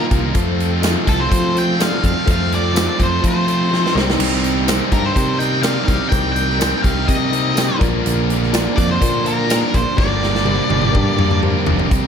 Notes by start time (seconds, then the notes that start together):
Already playing: D#3 A#3 D#4 F4 A#4 D#5 F5
0.09 C2 A#3 D#4 F4, kick, closed hi-hat
0.33 F2 C3 F3 A3 C4 F4 A4 C5, kick, closed hi-hat
0.60 closed hi-hat
0.81 F3 A3 C4 F4 A4 D#5, snare, closed hi-hat, tambourine
1.07 C2 F2 C3 F3 A3 C4 F4 A4, kick, closed hi-hat
1.20 C5
1.31 F3 F4 A4 C5, kick, closed hi-hat
1.53 A3 C4 F4 A4 C5, closed hi-hat
1.58 G5
1.78 F3 A3 C4 F4 A4 D5, snare, closed hi-hat, tambourine
1.82 F5
2.01 F2 A3 C4 F4, kick, closed hi-hat
2.06 F5
2.25 F2 C3 F3 A3 C4 F4 A4 C5, kick, closed hi-hat
2.31 F5
2.52 D5, closed hi-hat
2.73 F3 A3 C4 F4 A4 C5, closed hi-hat, tambourine
2.77 snare
2.97 F2 C3 F3 A3 C4 F4, kick, closed hi-hat
3.03 C5
3.21 F3 F4 A4 C5, kick, closed hi-hat
3.28 C5
3.46 A3 C4 F4 A4 C5, closed hi-hat
3.70 F3 A3 C4 F4 A4 C5, snare
3.86 snare
3.94 C2 C3 D#3 G3 A#3 C4 D#4 G4 A#4 C5, snare
4.10 snare
4.19 C2 C3 G3 C4 D#4, crash
4.44 closed hi-hat
4.67 C3 D#3 G3 C4 D#4 G4 A#4 C5, snare, closed hi-hat, tambourine
4.92 G2 A#4, kick, closed hi-hat
5.05 C5
5.13 C3 D#4 A#4 C5, kick, closed hi-hat
5.39 G3 C4 D#4 A#4 D#5 G5, closed hi-hat
5.63 C3 G3 C4 D#4 A#4 D5 F5, snare, closed hi-hat, tambourine
5.85 C3 D#3 D#4 F5, kick, closed hi-hat
5.89 C2 G3 C4 G4, snare
6.09 C3 D#4 A#4 C5 G5, kick, closed hi-hat
6.13 C2 G3 C4 D#4
6.33 G5, closed hi-hat
6.50 snare
6.58 C3 D#3 G3 C4 D#4 G4 A#4 D#5, closed hi-hat, tambourine
6.62 C4 D#4, snare
6.83 C2 F5, kick, closed hi-hat
7.08 C3 D#4 A#4 D#5, kick, closed hi-hat
7.31 G3 C4 D#4 A#4 D#5, closed hi-hat
7.54 C3 G3 C4 D#4 A#4 C5, snare, closed hi-hat, tambourine
7.79 A#1 A#2 D3 F3 A#3 D4 F4 A#4 D5, kick, closed hi-hat
7.83 snare
8.02 A#1 A#2 D3 F3 A#3 D4, closed hi-hat
8.30 closed hi-hat
8.43 snare
8.52 A#2 D3 F3 A#3 D4 F4 A#4 D5, snare, closed hi-hat, tambourine
8.76 F2 D5, kick, closed hi-hat
8.91 C5
9.01 A#2 F4 A#4 D5, kick, closed hi-hat
9.24 F3 A#3 D4 F4 A#4 C5, closed hi-hat
9.48 D3 F3 A#3 D4 F4 A#4 D5, snare, closed hi-hat, tambourine
9.72 A#1 F3 A#3 D4 C5, kick, closed hi-hat
9.96 G1 G2 D3 G3 A#3 D4 G4 A#4 D5, kick, snare
10.23 snare
10.35 snare
10.45 G2 D3 G3 A#3 D4 G4 A#4 C5, high tom
10.69 G1 G2 D3 G3 A#3 D4 G4, high tom
10.82 mid tom
10.92 G2 G4 A#4 D5, kick, mid tom
11.16 G3 A#3 D4 G4 A#4 D5, mid tom
11.31 mid tom
11.42 D3 G3 A#3 D4 G4 A#4 C5, mid tom
11.66 F1 G3 A#3 D4, floor tom
11.79 floor tom
11.90 C2 C3 G3 C4 D#4 G4, kick, closed hi-hat